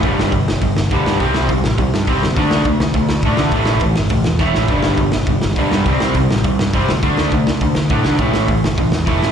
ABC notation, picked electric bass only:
X:1
M:4/4
L:1/8
Q:1/4=206
K:Dmix
V:1 name="Picked electric bass" clef=bass
G,,, G,,, G,,, G,,, G,,, G,,, D,, G,, | C,, C,, C,, A,,, C,, G,, G,,, D,, | D,, D,, D,, D,, D,, D,, A,, D, | A,,, A,,, A,,, G,,, A,,, E,, E,,, A,,, |
G,,, G,,, G,,, G,,, G,,, G,,, D,, G,, | C,, C,, C,, A,,, C,, G,, G,,, D,, | D,, D,, D,, D,, D,, D,, A,, D, | A,,, A,,, A,,, G,,, A,,, E,, E,,, A,,, |]